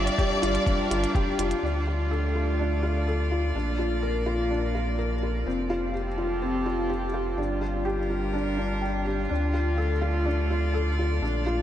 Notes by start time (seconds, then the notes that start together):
Already playing: G3 C4 D4 F4 G4 D5
0.00 F4
0.07 closed hi-hat
0.18 G4 A#4, kick, closed hi-hat
0.42 G1 F4, closed hi-hat
0.55 closed hi-hat
0.66 D4, kick, closed hi-hat
0.90 G1 F4, closed hi-hat
1.04 closed hi-hat
1.15 G4, kick, closed hi-hat
1.38 F1 F4, closed hi-hat
1.51 closed hi-hat
1.61 D2 D3 D4
1.82 A3
1.87 F4
1.96 D5
2.11 A4
2.35 F4
2.59 D4
2.83 F4
3.07 A4
3.32 F4
3.54 A#1 A#2 D4
3.63 A#3
3.79 F4
4.03 A#4
4.26 F4
4.50 D4
4.75 F4
4.98 A#4
5.22 F4
5.45 F1 F3 C4
5.59 C4
5.70 F4 G4
5.94 G4
6.00 A4
6.18 F4
6.42 C4
6.66 F4
6.90 G4
7.14 F4
7.37 G1 G3 D4
7.43 F4
7.54 D4
7.61 F4
7.85 G4
7.96 A#4
8.10 F4
8.33 D4
8.57 D4
8.81 G5
9.05 G4
9.29 D2 D3 D4
9.52 A3 F4 D5
9.77 A4
10.02 F4
10.26 D4
10.50 F4
10.74 A4
10.99 F4
11.22 A#1 A#2 D4
11.46 A#3 F4